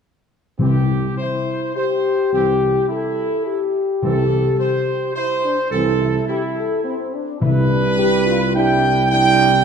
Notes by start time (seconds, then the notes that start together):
0.59 C2 C3 E3 C4 G4
1.17 E4 C5
1.76 G4 C5
2.33 C2 E3 C4 G4
2.89 E4 A4
3.46 G4
4.03 C2 C3 E3 C4 A4
4.59 C5
5.15 E4 C5
5.44 D4
5.71 C2 E3 C4 A4
6.00 E4
6.27 E4 G4
6.56 A4
6.84 C4
7.13 D4
7.41 C2 C3 G3 D4 E4 B4
7.69 D4
7.97 G4
8.26 F4
8.55 G3 D4 E4 G5
9.11 G3 D4 G5